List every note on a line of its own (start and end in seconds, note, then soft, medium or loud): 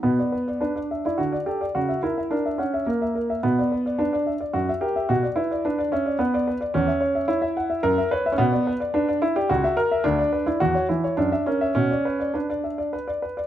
0.03 0.18 B2 soft
0.03 0.61 B3 soft
0.19 0.34 D5 soft
0.32 0.48 B4 soft
0.48 0.63 D5 soft
0.61 1.04 D4 soft
0.61 0.77 B4 soft
0.76 0.91 D5 soft
0.91 1.05 E5 soft
1.05 1.20 E4 soft
1.05 1.19 D5 soft
1.18 1.33 D3 soft
1.18 1.35 F#4 soft
1.32 1.48 D5 soft
1.46 1.64 G4 soft
1.46 1.62 A4 soft
1.61 1.76 D5 soft
1.75 1.89 C#3 soft
1.75 2.01 F#4 soft
1.89 2.04 E5 soft
2.03 2.32 E4 soft
2.03 2.19 A#4 soft
2.18 2.33 E5 soft
2.31 2.60 D4 soft
2.31 2.47 A#4 soft
2.45 2.61 E5 soft
2.58 2.84 C#4 soft
2.58 2.74 F#5 soft
2.74 2.89 E5 soft
2.86 3.39 A#3 soft
2.86 3.02 A#4 soft
3.02 3.17 E5 soft
3.15 3.30 A#4 soft
3.30 3.44 E5 soft
3.43 3.58 B2 soft
3.43 3.99 B3 medium
3.59 3.73 D5 soft
3.72 3.87 B4 soft
3.86 4.01 D5 soft
3.99 4.32 D4 soft
3.99 4.14 B4 soft
4.13 4.28 D5 soft
4.26 4.41 E5 soft
4.41 4.55 D5 soft
4.53 4.68 F#2 soft
4.53 4.70 F#4 medium
4.69 4.83 E5 soft
4.81 5.09 G4 soft
4.81 4.97 A#4 soft
4.96 5.10 E5 soft
5.09 5.23 B2 soft
5.09 5.26 F#4 medium
5.23 5.38 D5 soft
5.36 5.64 E4 soft
5.36 5.52 B4 soft
5.51 5.66 D5 soft
5.65 5.92 D4 soft
5.65 5.80 B4 soft
5.79 5.93 D5 soft
5.92 6.17 C#4 medium
5.92 6.06 E5 soft
6.06 6.20 D5 soft
6.19 6.52 B3 soft
6.19 6.34 B4 soft
6.34 6.48 D5 soft
6.48 6.61 B4 soft
6.61 6.74 D5 soft
6.74 6.88 E2 soft
6.74 7.24 C#4 medium
6.88 7.02 E5 soft
7.01 7.15 C#5 soft
7.15 7.29 E5 soft
7.28 7.80 E4 medium
7.28 7.43 C#5 soft
7.42 7.56 E5 soft
7.57 7.70 F#5 soft
7.70 7.84 E5 soft
7.83 7.97 F#2 soft
7.83 8.08 A#4 medium
7.98 8.12 E5 soft
8.11 8.32 B4 medium
8.11 8.26 C#5 soft
8.26 8.39 E5 soft
8.32 8.39 C#4 soft
8.38 8.52 B2 soft
8.38 8.71 B3 medium
8.53 8.67 D5 soft
8.67 8.81 B4 soft
8.80 8.95 D5 soft
8.94 9.21 D4 medium
8.94 9.09 B4 soft
9.08 9.22 D5 soft
9.22 9.35 E4 medium
9.22 9.35 E5 soft
9.36 9.49 G4 medium
9.36 9.49 D5 soft
9.49 9.63 C#2 soft
9.49 9.76 F#4 medium
9.64 9.78 E5 soft
9.77 10.04 A#4 medium
9.91 10.05 E5 soft
10.04 10.18 D2 medium
10.04 10.46 D4 medium
10.19 10.33 D5 soft
10.33 10.47 B4 soft
10.46 10.60 E4 soft
10.46 10.60 D5 soft
10.60 10.75 E2 soft
10.60 10.86 F#4 medium
10.75 10.89 C#5 soft
10.89 11.04 E3 soft
10.89 11.17 E4 soft
11.04 11.17 C#5 soft
11.17 11.31 F#2 soft
11.17 11.46 D4 medium
11.32 11.47 E5 soft
11.46 11.73 C#4 medium
11.46 11.62 A#4 soft
11.61 11.76 E5 soft
11.75 11.90 B2 soft
11.75 12.34 C#4 medium
11.91 12.06 D5 soft
12.05 12.21 B4 soft
12.20 12.35 D5 soft
12.34 12.93 D4 soft
12.34 12.50 B4 soft
12.50 12.65 D5 soft
12.64 12.79 E5 soft
12.78 12.94 D5 soft
12.93 13.09 B4 soft
13.08 13.23 D5 soft
13.22 13.38 B4 soft
13.37 13.47 D5 soft